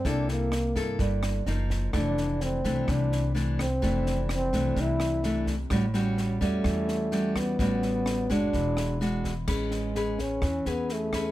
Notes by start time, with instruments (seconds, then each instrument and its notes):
0.05 upright bass C2, nylon-string guitar C3 A#3 E4 A4, trombone D4, kick, snare
0.28 trombone A#3, snare
0.52 cross-stick, snare
0.76 upright bass G2, nylon-string guitar A#3 E4 A4, kick, snare
0.99 upright bass G1, nylon-string guitar G2, kick, snare
1.23 cross-stick, snare
1.46 upright bass F#1, nylon-string guitar F3 A#3 D#4, snare
1.70 kick, snare
1.93 upright bass F1, nylon-string guitar F2 E3 A3 D4, trombone D4, kick, cross-stick, snare
2.17 snare
2.41 trombone C4, snare
2.64 upright bass C2, nylon-string guitar E3 A3 D4, kick, snare
2.88 upright bass C2, nylon-string guitar C3, trombone D4, kick, cross-stick, snare
3.12 snare
3.35 nylon-string guitar E3 A3 D4, snare
3.59 trombone C4, kick, cross-stick, snare
3.82 upright bass F1, nylon-string guitar F2 E3 A3 D4, kick, snare
4.06 snare
4.29 trombone C4, cross-stick, snare
4.53 upright bass C2, nylon-string guitar E3 A3 D4, kick, snare
4.76 upright bass C2, nylon-string guitar C3, kick, snare
4.80 trombone E4
5.00 cross-stick, snare
5.23 nylon-string guitar E3 A3 D4, snare
5.47 kick, snare
5.70 upright bass A1, nylon-string guitar A2 G3 C#4 F#4, kick, cross-stick, snare
5.94 nylon-string guitar G3 C#4 F#4, snare
6.17 snare
6.41 upright bass E2, nylon-string guitar G3 C#4 F#4, trombone A3, kick, snare
6.64 upright bass E2, nylon-string guitar E3, kick, cross-stick, snare
6.88 snare
7.12 nylon-string guitar G3 C#4 F#4, snare
7.36 trombone B3, kick, cross-stick, snare
7.59 upright bass A1, nylon-string guitar A2 G3 C#4 F#4, kick, snare
7.82 snare
8.06 cross-stick, snare
8.30 upright bass F#1, nylon-string guitar G#3 D4 F#4, trombone D4, kick, snare
8.53 upright bass E1, nylon-string guitar E3, kick, snare
8.77 cross-stick, snare
9.01 nylon-string guitar G#3 D4 F#4, snare
9.24 kick, snare
9.48 upright bass A1, trombone G#3, nylon-string guitar C#4 G#4 B4, kick, cross-stick, snare, crash
9.71 snare
9.95 nylon-string guitar C#4 G#4 B4, snare
10.19 trombone C#4, kick, snare
10.42 upright bass E2, nylon-string guitar E3, kick, cross-stick, snare
10.66 upright bass E2, trombone B3, nylon-string guitar C#4 G#4 B4, snare
10.89 trombone A3, snare
11.13 nylon-string guitar C#4 G#4 B4, kick, cross-stick, snare